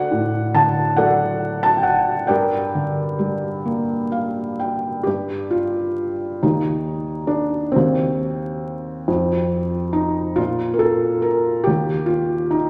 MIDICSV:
0, 0, Header, 1, 2, 480
1, 0, Start_track
1, 0, Key_signature, -2, "minor"
1, 0, Tempo, 868307
1, 1268, Time_signature, 6, 3, 24, 8
1, 1268, Tempo, 921659
1, 3188, Tempo, 887574
1, 4148, Tempo, 870827
1, 6872, End_track
2, 0, Start_track
2, 0, Title_t, "Felt piano"
2, 0, Program_c, 0, 0
2, 0, Control_c, 0, 64, 127
2, 0, Note_on_c, 0, 38, 61
2, 0, Note_on_c, 0, 69, 63
2, 0, Note_on_c, 0, 74, 62
2, 0, Note_on_c, 0, 78, 86
2, 62, Note_on_c, 0, 45, 48
2, 300, Note_on_c, 0, 50, 53
2, 301, Note_on_c, 0, 81, 89
2, 316, Note_off_c, 0, 78, 0
2, 521, Note_off_c, 0, 69, 0
2, 522, Note_off_c, 0, 74, 0
2, 525, Note_off_c, 0, 81, 0
2, 533, Note_on_c, 0, 78, 77
2, 540, Note_on_c, 0, 54, 52
2, 541, Note_on_c, 0, 69, 62
2, 544, Note_on_c, 0, 74, 59
2, 901, Note_on_c, 0, 81, 87
2, 910, Note_off_c, 0, 78, 0
2, 978, Note_on_c, 0, 79, 58
2, 989, Note_off_c, 0, 81, 0
2, 1000, Note_off_c, 0, 45, 0
2, 1011, Note_on_c, 0, 78, 77
2, 1020, Note_off_c, 0, 79, 0
2, 1240, Note_off_c, 0, 38, 0
2, 1243, Note_off_c, 0, 50, 0
2, 1244, Note_off_c, 0, 54, 0
2, 1244, Note_off_c, 0, 69, 0
2, 1246, Note_off_c, 0, 74, 0
2, 1255, Note_on_c, 0, 79, 77
2, 1260, Note_on_c, 0, 70, 57
2, 1262, Note_on_c, 0, 74, 60
2, 1266, Note_on_c, 0, 43, 63
2, 1269, Note_off_c, 0, 78, 0
2, 1275, Control_c, 0, 64, 0
2, 1366, Control_c, 0, 64, 127
2, 1502, Note_on_c, 0, 50, 47
2, 1733, Note_on_c, 0, 55, 46
2, 1977, Note_on_c, 0, 58, 45
2, 2192, Note_off_c, 0, 79, 0
2, 2195, Note_off_c, 0, 70, 0
2, 2195, Note_off_c, 0, 74, 0
2, 2219, Note_on_c, 0, 77, 53
2, 2444, Note_off_c, 0, 50, 0
2, 2446, Note_off_c, 0, 77, 0
2, 2466, Note_on_c, 0, 79, 51
2, 2687, Note_off_c, 0, 43, 0
2, 2687, Note_off_c, 0, 55, 0
2, 2688, Note_off_c, 0, 58, 0
2, 2693, Note_off_c, 0, 79, 0
2, 2695, Note_on_c, 0, 67, 68
2, 2712, Note_on_c, 0, 43, 52
2, 2716, Control_c, 0, 64, 0
2, 2816, Control_c, 0, 64, 127
2, 2941, Note_on_c, 0, 65, 66
2, 2952, Note_off_c, 0, 67, 0
2, 3410, Note_off_c, 0, 43, 0
2, 3429, Note_on_c, 0, 63, 66
2, 3430, Note_on_c, 0, 39, 51
2, 3438, Control_c, 0, 64, 0
2, 3439, Note_off_c, 0, 65, 0
2, 3515, Control_c, 0, 64, 127
2, 3886, Note_off_c, 0, 63, 0
2, 3887, Note_on_c, 0, 62, 64
2, 4127, Note_off_c, 0, 39, 0
2, 4128, Note_on_c, 0, 60, 72
2, 4146, Note_off_c, 0, 62, 0
2, 4150, Note_on_c, 0, 39, 59
2, 4156, Control_c, 0, 64, 0
2, 4243, Control_c, 0, 64, 127
2, 4857, Note_off_c, 0, 39, 0
2, 4878, Note_on_c, 0, 41, 58
2, 4884, Control_c, 0, 64, 0
2, 4997, Control_c, 0, 64, 127
2, 5325, Note_off_c, 0, 60, 0
2, 5345, Note_on_c, 0, 63, 72
2, 5575, Note_off_c, 0, 41, 0
2, 5582, Note_on_c, 0, 65, 85
2, 5594, Note_on_c, 0, 46, 64
2, 5598, Note_off_c, 0, 63, 0
2, 5604, Control_c, 0, 64, 0
2, 5698, Control_c, 0, 64, 127
2, 5791, Note_on_c, 0, 70, 62
2, 5797, Note_off_c, 0, 65, 0
2, 5821, Note_on_c, 0, 69, 78
2, 5832, Note_off_c, 0, 70, 0
2, 6058, Note_on_c, 0, 70, 74
2, 6074, Note_off_c, 0, 69, 0
2, 6287, Note_on_c, 0, 67, 76
2, 6289, Note_off_c, 0, 46, 0
2, 6306, Note_on_c, 0, 39, 57
2, 6311, Note_off_c, 0, 70, 0
2, 6318, Control_c, 0, 64, 0
2, 6416, Control_c, 0, 64, 127
2, 6520, Note_off_c, 0, 67, 0
2, 6520, Note_on_c, 0, 65, 71
2, 6766, Note_on_c, 0, 63, 71
2, 6781, Note_off_c, 0, 65, 0
2, 6872, Note_off_c, 0, 39, 0
2, 6872, Note_off_c, 0, 63, 0
2, 6872, End_track
0, 0, End_of_file